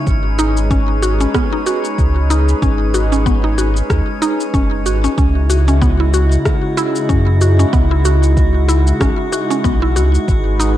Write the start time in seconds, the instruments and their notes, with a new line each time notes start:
Already playing: synth texture C#4 C#5
0.07 sub bass G#1, analog synth pad G#3 D#4 G#4 B4, kick, shaker
0.39 synth pluck D#4, shaker
0.57 shaker
0.71 synth pluck C#4, kick, shaker
1.02 synth pluck F#4, shaker
1.21 synth pluck C#4, shaker
1.34 synth pluck B3, kick, cross-stick, shaker
1.53 synth pluck D#4
1.66 synth pluck F#4, shaker
1.85 shaker
1.98 sub bass C#2, kick, shaker
2.30 synth pluck D#4, shaker
2.49 shaker
2.62 sub bass G#1, synth pluck C#4, kick, shaker
2.94 synth pluck F#4, shaker
3.12 synth pluck C#4, shaker
3.26 synth pluck B3, kick, shaker
3.44 synth pluck D#4
3.58 synth pluck F#4, shaker
3.76 shaker
3.90 sub bass D#2, kick, cross-stick, shaker
4.22 synth pluck D#4, shaker
4.40 shaker
4.54 sub bass F#1, synth pluck C#4, kick, shaker
4.86 sub bass G#1, synth pluck F#4, shaker
5.04 synth pluck C#4, shaker
5.17 sub bass C#2, analog synth pad C#3 D#4 E4, synth pluck C#4, synth texture F#4 F#5, kick, shaker
5.50 synth pluck F#4, shaker
5.68 synth pluck C#4, shaker
5.82 synth pluck B3, kick, shaker
6.00 synth pluck E4
6.14 synth pluck F#4, shaker
6.32 shaker
6.45 kick, cross-stick, shaker
6.77 synth pluck E4, shaker
6.95 shaker
7.09 sub bass F#2, synth pluck C#4, kick, shaker
7.41 synth pluck F#4, shaker
7.59 synth pluck C#4, shaker
7.73 sub bass C#2, synth pluck B3, kick, shaker
7.91 synth pluck E4
8.05 synth pluck F#4, shaker
8.23 shaker
8.37 kick, shaker
8.69 synth pluck E4, shaker
8.87 shaker
9.01 sub bass G#1, synth pluck C#4, kick, cross-stick, shaker
9.32 synth pluck F#4, shaker
9.50 synth pluck C#4, shaker
9.64 sub bass B1, synth pluck B3, kick, shaker
9.82 synth pluck E4
9.96 sub bass C#2, synth pluck F#4, shaker
10.15 shaker
10.28 sub bass G#1, analog synth pad D#4 G#4 B4, kick, shaker
10.60 synth pluck D#4, shaker